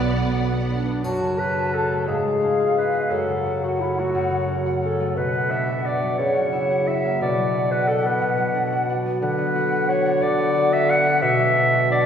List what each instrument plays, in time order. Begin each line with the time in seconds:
Already playing: double bass section B1, harp F#3 B3 D4 F#4, clarinet B3, cello section B3, viola section B3, violin section D5 F#5
0.00 harp B2
0.15 harp B3
0.33 harp F#3
0.52 harp D4
0.69 harp B3, clarinet D4
0.87 harp D4
1.04 harp F#2, bassoon F#3, clarinet F#4, flute section A5, triangle
1.21 harp C#3
1.39 harp C#4, clarinet B4
1.57 harp F#4
1.74 harp C#4, clarinet A4
1.92 harp A3
2.07 harp G#2, bassoon G#3, clarinet G#4, flute section F5
2.25 harp G#3
2.42 harp C#4
2.60 harp F4
2.77 harp C#4, clarinet B4
2.94 harp B3
3.11 harp F#2, bassoon F#3, clarinet A4, flute section F#5
3.28 harp C#3
3.46 harp C#4
3.63 clarinet F#4, harp F#4
3.81 harp C#4, clarinet E4
3.99 harp A3, clarinet F#4
4.15 harp F#2
4.31 harp C#3
4.48 harp C#4
4.66 harp F#4
4.83 harp C#4, clarinet A4
5.00 harp A3
5.17 bassoon B2, harp B2, clarinet B4, flute section F#5
5.33 harp B3
5.50 harp D4, clarinet E5
5.68 harp F#4
5.85 harp D4, clarinet D5
6.02 harp F#3
6.18 harp C#3, bassoon C#3, clarinet C#5
6.35 harp C#4
6.53 harp E4
6.71 harp F#4
6.87 harp E4, clarinet E5
7.05 harp A#3
7.21 harp B2, bassoon B2, clarinet D5, flute section F#5
7.37 harp F#3
7.54 harp D4
7.71 harp F#4, clarinet B4
7.88 harp D4, clarinet A4
8.06 harp B3, clarinet B4
8.22 harp B2
8.38 harp F#3
8.55 harp D4
8.72 harp F#4
8.90 harp D4
9.06 harp B3
9.22 bassoon D3, harp D3, clarinet B4, flute section F#5
9.38 harp B3
9.56 harp F#4
9.72 harp B4
9.89 harp F#4, clarinet C#5
10.06 harp D4
10.22 harp D3, clarinet D5, flute section F#5
10.38 harp B3
10.56 harp F#4
10.72 harp B4, clarinet E5
10.89 harp F#4, clarinet F#5, flute section F#5
11.06 harp D4
11.22 harp B2, bassoon B2, clarinet E5, flute section F#5
11.39 harp F#3
11.57 harp D4
11.75 harp F#4
11.91 harp D4, clarinet D5, flute section F#5